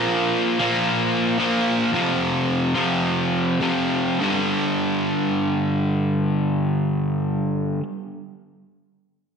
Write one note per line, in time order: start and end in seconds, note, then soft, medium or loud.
0.00 0.58 A#2 medium
0.00 0.60 F3 medium
0.00 0.58 A#3 loud
0.59 1.37 A#2 medium
0.59 1.37 F3 medium
0.59 1.36 A#3 medium
1.38 1.90 A#2 medium
1.38 1.91 F3 medium
1.38 1.91 A#3 medium
1.92 2.73 F2 medium
1.92 2.73 C3 medium
1.92 2.73 F3 medium
2.74 3.59 F2 medium
2.74 3.59 C3 medium
2.74 3.58 F3 medium
3.60 4.17 F2 medium
3.60 4.18 C3 medium
3.60 4.18 F3 medium
4.19 7.78 G2 medium
4.19 7.80 D3 medium
4.24 7.83 G3 loud